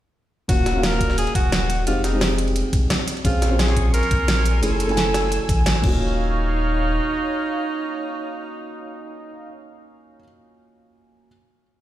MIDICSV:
0, 0, Header, 1, 6, 480
1, 0, Start_track
1, 0, Tempo, 344828
1, 682, Time_signature, 4, 2, 24, 8
1, 16441, End_track
2, 0, Start_track
2, 0, Title_t, "Analog synth pad"
2, 0, Program_c, 0, 89
2, 4517, Note_on_c, 0, 85, 92
2, 4519, Note_on_c, 0, 80, 81
2, 4519, Note_on_c, 0, 84, 75
2, 6420, Note_off_c, 0, 85, 0
2, 6421, Note_off_c, 0, 84, 0
2, 6443, Note_on_c, 0, 88, 87
2, 8084, Note_off_c, 0, 80, 0
2, 8105, Note_off_c, 0, 88, 0
2, 8119, Note_on_c, 0, 73, 80
2, 8119, Note_on_c, 0, 77, 76
2, 13258, Note_off_c, 0, 73, 0
2, 13258, Note_off_c, 0, 77, 0
2, 16441, End_track
3, 0, Start_track
3, 0, Title_t, "Alto saxophone"
3, 0, Program_c, 1, 65
3, 683, Note_on_c, 1, 66, 104
3, 1165, Note_on_c, 1, 70, 111
3, 1186, Note_off_c, 1, 66, 0
3, 1636, Note_off_c, 1, 70, 0
3, 1645, Note_on_c, 1, 68, 108
3, 1866, Note_off_c, 1, 68, 0
3, 1883, Note_on_c, 1, 66, 102
3, 2552, Note_off_c, 1, 66, 0
3, 2605, Note_on_c, 1, 65, 94
3, 2826, Note_off_c, 1, 65, 0
3, 2843, Note_on_c, 1, 63, 85
3, 3289, Note_off_c, 1, 63, 0
3, 4526, Note_on_c, 1, 65, 98
3, 5003, Note_on_c, 1, 68, 103
3, 5024, Note_off_c, 1, 65, 0
3, 5475, Note_off_c, 1, 68, 0
3, 5483, Note_on_c, 1, 70, 121
3, 6387, Note_off_c, 1, 70, 0
3, 6443, Note_on_c, 1, 69, 106
3, 7827, Note_off_c, 1, 69, 0
3, 8122, Note_on_c, 1, 63, 98
3, 13260, Note_off_c, 1, 63, 0
3, 16441, End_track
4, 0, Start_track
4, 0, Title_t, "Felt piano"
4, 0, Program_c, 2, 0
4, 670, Note_on_c, 2, 58, 89
4, 680, Note_on_c, 2, 61, 74
4, 687, Note_on_c, 2, 65, 77
4, 696, Note_on_c, 2, 66, 94
4, 947, Control_c, 2, 64, 127
4, 1004, Note_off_c, 2, 58, 0
4, 1018, Note_off_c, 2, 61, 0
4, 1021, Note_off_c, 2, 65, 0
4, 1025, Note_on_c, 2, 58, 94
4, 1026, Note_off_c, 2, 66, 0
4, 1042, Note_on_c, 2, 61, 85
4, 1059, Note_on_c, 2, 77, 84
4, 1076, Note_on_c, 2, 66, 98
4, 2563, Note_off_c, 2, 58, 0
4, 2571, Note_off_c, 2, 61, 0
4, 2579, Note_off_c, 2, 77, 0
4, 2588, Note_off_c, 2, 66, 0
4, 2591, Note_on_c, 2, 56, 86
4, 2599, Note_on_c, 2, 60, 81
4, 2607, Note_on_c, 2, 63, 79
4, 2616, Note_on_c, 2, 67, 95
4, 2623, Control_c, 2, 64, 0
4, 2842, Control_c, 2, 64, 127
4, 2922, Note_off_c, 2, 56, 0
4, 2937, Note_off_c, 2, 60, 0
4, 2941, Note_off_c, 2, 63, 0
4, 2943, Note_on_c, 2, 56, 94
4, 2946, Note_off_c, 2, 67, 0
4, 2960, Note_on_c, 2, 60, 87
4, 2976, Note_on_c, 2, 63, 86
4, 2994, Note_on_c, 2, 67, 99
4, 4255, Note_off_c, 2, 56, 0
4, 4264, Note_off_c, 2, 60, 0
4, 4272, Note_off_c, 2, 63, 0
4, 4281, Note_off_c, 2, 67, 0
4, 4301, Control_c, 2, 64, 0
4, 4509, Note_on_c, 2, 60, 87
4, 4516, Control_c, 2, 64, 127
4, 4519, Note_on_c, 2, 61, 79
4, 4528, Note_on_c, 2, 65, 77
4, 4535, Note_on_c, 2, 68, 96
4, 4840, Note_off_c, 2, 60, 0
4, 4857, Note_off_c, 2, 61, 0
4, 4861, Note_on_c, 2, 60, 96
4, 4862, Note_off_c, 2, 65, 0
4, 4865, Note_off_c, 2, 68, 0
4, 4878, Note_on_c, 2, 61, 85
4, 4895, Note_on_c, 2, 65, 85
4, 4912, Note_on_c, 2, 68, 101
4, 6401, Note_off_c, 2, 60, 0
4, 6409, Note_off_c, 2, 61, 0
4, 6418, Note_off_c, 2, 65, 0
4, 6426, Note_off_c, 2, 68, 0
4, 6428, Note_on_c, 2, 57, 85
4, 6437, Note_on_c, 2, 61, 78
4, 6446, Note_on_c, 2, 64, 78
4, 6454, Note_on_c, 2, 68, 92
4, 6459, Control_c, 2, 64, 0
4, 6667, Control_c, 2, 64, 127
4, 6764, Note_off_c, 2, 57, 0
4, 6776, Note_off_c, 2, 61, 0
4, 6781, Note_off_c, 2, 64, 0
4, 6785, Note_off_c, 2, 68, 0
4, 6785, Note_on_c, 2, 57, 92
4, 6801, Note_on_c, 2, 61, 85
4, 6819, Note_on_c, 2, 64, 88
4, 6837, Note_on_c, 2, 80, 105
4, 8087, Note_on_c, 2, 58, 86
4, 8092, Note_off_c, 2, 61, 0
4, 8109, Note_off_c, 2, 57, 0
4, 8112, Note_on_c, 2, 61, 78
4, 8126, Note_off_c, 2, 64, 0
4, 8135, Note_off_c, 2, 80, 0
4, 8137, Note_on_c, 2, 65, 75
4, 8138, Control_c, 2, 64, 0
4, 8163, Note_on_c, 2, 66, 96
4, 8251, Control_c, 2, 64, 127
4, 8376, Control_c, 2, 64, 0
4, 8597, Control_c, 2, 64, 127
4, 14145, Note_off_c, 2, 58, 0
4, 14171, Note_off_c, 2, 61, 0
4, 14196, Note_off_c, 2, 65, 0
4, 14222, Note_off_c, 2, 66, 0
4, 15700, Control_c, 2, 64, 0
4, 16441, End_track
5, 0, Start_track
5, 0, Title_t, "Sub bass"
5, 0, Program_c, 3, 38
5, 684, Note_on_c, 3, 27, 95
5, 1750, Note_off_c, 3, 27, 0
5, 1882, Note_on_c, 3, 27, 93
5, 2584, Note_off_c, 3, 27, 0
5, 2602, Note_on_c, 3, 29, 97
5, 3669, Note_off_c, 3, 29, 0
5, 4521, Note_on_c, 3, 34, 98
5, 5588, Note_off_c, 3, 34, 0
5, 5722, Note_on_c, 3, 34, 95
5, 6424, Note_off_c, 3, 34, 0
5, 6443, Note_on_c, 3, 30, 97
5, 7509, Note_off_c, 3, 30, 0
5, 7642, Note_on_c, 3, 33, 82
5, 8104, Note_off_c, 3, 33, 0
5, 8122, Note_on_c, 3, 27, 101
5, 9746, Note_off_c, 3, 27, 0
5, 16441, End_track
6, 0, Start_track
6, 0, Title_t, "Drums"
6, 681, Note_on_c, 9, 51, 91
6, 683, Note_on_c, 9, 36, 120
6, 683, Note_on_c, 9, 42, 81
6, 820, Note_off_c, 9, 51, 0
6, 822, Note_off_c, 9, 36, 0
6, 822, Note_off_c, 9, 42, 0
6, 921, Note_on_c, 9, 38, 55
6, 921, Note_on_c, 9, 51, 70
6, 922, Note_on_c, 9, 42, 91
6, 1060, Note_off_c, 9, 38, 0
6, 1060, Note_off_c, 9, 51, 0
6, 1061, Note_off_c, 9, 42, 0
6, 1161, Note_on_c, 9, 38, 121
6, 1161, Note_on_c, 9, 51, 88
6, 1162, Note_off_c, 9, 38, 0
6, 1162, Note_on_c, 9, 38, 123
6, 1162, Note_on_c, 9, 42, 85
6, 1289, Note_off_c, 9, 38, 0
6, 1289, Note_on_c, 9, 38, 52
6, 1300, Note_off_c, 9, 51, 0
6, 1302, Note_off_c, 9, 42, 0
6, 1401, Note_on_c, 9, 42, 93
6, 1402, Note_on_c, 9, 36, 62
6, 1402, Note_on_c, 9, 51, 72
6, 1429, Note_off_c, 9, 38, 0
6, 1529, Note_on_c, 9, 38, 38
6, 1541, Note_off_c, 9, 36, 0
6, 1541, Note_off_c, 9, 42, 0
6, 1541, Note_off_c, 9, 51, 0
6, 1641, Note_on_c, 9, 51, 88
6, 1642, Note_on_c, 9, 42, 84
6, 1668, Note_off_c, 9, 38, 0
6, 1768, Note_off_c, 9, 51, 0
6, 1768, Note_on_c, 9, 51, 44
6, 1781, Note_off_c, 9, 42, 0
6, 1881, Note_on_c, 9, 36, 103
6, 1882, Note_off_c, 9, 51, 0
6, 1882, Note_on_c, 9, 51, 67
6, 1883, Note_on_c, 9, 42, 98
6, 2020, Note_off_c, 9, 36, 0
6, 2021, Note_off_c, 9, 51, 0
6, 2022, Note_off_c, 9, 42, 0
6, 2121, Note_on_c, 9, 38, 122
6, 2121, Note_on_c, 9, 51, 93
6, 2123, Note_off_c, 9, 38, 0
6, 2123, Note_on_c, 9, 38, 123
6, 2123, Note_on_c, 9, 42, 85
6, 2260, Note_off_c, 9, 51, 0
6, 2262, Note_off_c, 9, 38, 0
6, 2262, Note_off_c, 9, 42, 0
6, 2361, Note_on_c, 9, 51, 67
6, 2363, Note_on_c, 9, 42, 99
6, 2500, Note_off_c, 9, 51, 0
6, 2502, Note_off_c, 9, 42, 0
6, 2600, Note_on_c, 9, 51, 89
6, 2603, Note_on_c, 9, 42, 81
6, 2739, Note_off_c, 9, 51, 0
6, 2742, Note_off_c, 9, 42, 0
6, 2842, Note_on_c, 9, 38, 54
6, 2842, Note_on_c, 9, 42, 99
6, 2842, Note_on_c, 9, 51, 71
6, 2981, Note_off_c, 9, 38, 0
6, 2981, Note_off_c, 9, 42, 0
6, 2981, Note_off_c, 9, 51, 0
6, 3079, Note_on_c, 9, 38, 124
6, 3079, Note_on_c, 9, 46, 84
6, 3081, Note_off_c, 9, 38, 0
6, 3081, Note_on_c, 9, 38, 125
6, 3081, Note_on_c, 9, 42, 89
6, 3218, Note_off_c, 9, 46, 0
6, 3220, Note_off_c, 9, 38, 0
6, 3220, Note_off_c, 9, 42, 0
6, 3319, Note_on_c, 9, 51, 73
6, 3320, Note_on_c, 9, 42, 95
6, 3447, Note_off_c, 9, 51, 0
6, 3447, Note_on_c, 9, 51, 42
6, 3459, Note_off_c, 9, 42, 0
6, 3559, Note_off_c, 9, 51, 0
6, 3559, Note_on_c, 9, 51, 87
6, 3560, Note_on_c, 9, 42, 84
6, 3699, Note_off_c, 9, 51, 0
6, 3700, Note_off_c, 9, 42, 0
6, 3799, Note_on_c, 9, 42, 100
6, 3800, Note_on_c, 9, 36, 110
6, 3801, Note_on_c, 9, 51, 69
6, 3939, Note_off_c, 9, 36, 0
6, 3939, Note_off_c, 9, 42, 0
6, 3940, Note_off_c, 9, 51, 0
6, 4040, Note_on_c, 9, 38, 120
6, 4040, Note_on_c, 9, 42, 85
6, 4040, Note_on_c, 9, 51, 92
6, 4168, Note_off_c, 9, 38, 0
6, 4168, Note_on_c, 9, 38, 51
6, 4179, Note_off_c, 9, 42, 0
6, 4179, Note_off_c, 9, 51, 0
6, 4281, Note_on_c, 9, 42, 99
6, 4281, Note_on_c, 9, 51, 80
6, 4307, Note_off_c, 9, 38, 0
6, 4410, Note_off_c, 9, 51, 0
6, 4410, Note_on_c, 9, 51, 41
6, 4420, Note_off_c, 9, 42, 0
6, 4520, Note_on_c, 9, 36, 127
6, 4521, Note_off_c, 9, 51, 0
6, 4521, Note_on_c, 9, 42, 76
6, 4521, Note_on_c, 9, 51, 92
6, 4659, Note_off_c, 9, 36, 0
6, 4660, Note_off_c, 9, 42, 0
6, 4661, Note_off_c, 9, 51, 0
6, 4761, Note_on_c, 9, 42, 93
6, 4762, Note_on_c, 9, 38, 57
6, 4762, Note_on_c, 9, 51, 71
6, 4901, Note_off_c, 9, 42, 0
6, 4902, Note_off_c, 9, 38, 0
6, 4902, Note_off_c, 9, 51, 0
6, 5000, Note_on_c, 9, 38, 120
6, 5000, Note_on_c, 9, 51, 89
6, 5003, Note_off_c, 9, 38, 0
6, 5003, Note_on_c, 9, 38, 127
6, 5003, Note_on_c, 9, 42, 85
6, 5128, Note_off_c, 9, 38, 0
6, 5128, Note_on_c, 9, 38, 53
6, 5139, Note_off_c, 9, 51, 0
6, 5142, Note_off_c, 9, 42, 0
6, 5241, Note_on_c, 9, 36, 63
6, 5242, Note_on_c, 9, 42, 93
6, 5267, Note_off_c, 9, 38, 0
6, 5380, Note_off_c, 9, 36, 0
6, 5381, Note_off_c, 9, 42, 0
6, 5481, Note_on_c, 9, 51, 92
6, 5483, Note_on_c, 9, 42, 85
6, 5609, Note_off_c, 9, 51, 0
6, 5609, Note_on_c, 9, 51, 45
6, 5622, Note_off_c, 9, 42, 0
6, 5720, Note_off_c, 9, 51, 0
6, 5720, Note_on_c, 9, 51, 70
6, 5721, Note_on_c, 9, 36, 108
6, 5722, Note_on_c, 9, 42, 97
6, 5860, Note_off_c, 9, 36, 0
6, 5860, Note_off_c, 9, 51, 0
6, 5861, Note_off_c, 9, 42, 0
6, 5961, Note_on_c, 9, 38, 127
6, 5961, Note_on_c, 9, 42, 82
6, 5961, Note_on_c, 9, 51, 93
6, 6100, Note_off_c, 9, 38, 0
6, 6100, Note_off_c, 9, 42, 0
6, 6100, Note_off_c, 9, 51, 0
6, 6200, Note_on_c, 9, 51, 67
6, 6202, Note_on_c, 9, 42, 99
6, 6340, Note_off_c, 9, 51, 0
6, 6341, Note_off_c, 9, 42, 0
6, 6440, Note_on_c, 9, 51, 91
6, 6442, Note_on_c, 9, 42, 77
6, 6579, Note_off_c, 9, 51, 0
6, 6582, Note_off_c, 9, 42, 0
6, 6681, Note_on_c, 9, 51, 81
6, 6682, Note_on_c, 9, 42, 90
6, 6808, Note_off_c, 9, 51, 0
6, 6808, Note_on_c, 9, 51, 39
6, 6821, Note_off_c, 9, 42, 0
6, 6918, Note_off_c, 9, 51, 0
6, 6918, Note_on_c, 9, 51, 64
6, 6922, Note_on_c, 9, 38, 127
6, 6922, Note_on_c, 9, 42, 82
6, 7058, Note_off_c, 9, 51, 0
6, 7061, Note_off_c, 9, 38, 0
6, 7061, Note_off_c, 9, 42, 0
6, 7160, Note_on_c, 9, 38, 109
6, 7160, Note_on_c, 9, 51, 83
6, 7163, Note_on_c, 9, 42, 93
6, 7299, Note_off_c, 9, 38, 0
6, 7299, Note_off_c, 9, 51, 0
6, 7302, Note_off_c, 9, 42, 0
6, 7402, Note_on_c, 9, 51, 87
6, 7404, Note_on_c, 9, 42, 81
6, 7541, Note_off_c, 9, 51, 0
6, 7543, Note_off_c, 9, 42, 0
6, 7642, Note_on_c, 9, 36, 108
6, 7642, Note_on_c, 9, 51, 68
6, 7644, Note_on_c, 9, 42, 91
6, 7781, Note_off_c, 9, 36, 0
6, 7781, Note_off_c, 9, 51, 0
6, 7783, Note_off_c, 9, 42, 0
6, 7880, Note_on_c, 9, 38, 117
6, 7880, Note_on_c, 9, 51, 92
6, 7884, Note_off_c, 9, 38, 0
6, 7884, Note_on_c, 9, 38, 127
6, 7884, Note_on_c, 9, 42, 82
6, 8009, Note_off_c, 9, 38, 0
6, 8009, Note_on_c, 9, 38, 50
6, 8019, Note_off_c, 9, 51, 0
6, 8023, Note_off_c, 9, 42, 0
6, 8122, Note_on_c, 9, 36, 118
6, 8123, Note_on_c, 9, 49, 87
6, 8148, Note_off_c, 9, 38, 0
6, 8261, Note_off_c, 9, 36, 0
6, 8262, Note_off_c, 9, 49, 0
6, 16441, End_track
0, 0, End_of_file